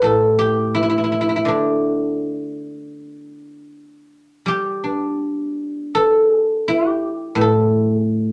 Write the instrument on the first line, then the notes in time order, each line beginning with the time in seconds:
guzheng
Already playing: G4 B4
0.02 A2 A4
0.39 G4
0.75 E4
0.83 E4
0.90 E4
0.98 E4
1.04 E4
1.12 E4
1.21 E4
1.29 E4
1.36 E4
1.45 D3 D4
4.46 G3 G4
4.84 D4
5.95 A4
6.39 G4
6.68 E4
6.89 G4
7.35 A2
7.41 A4
7.93 G#4
8.06 G4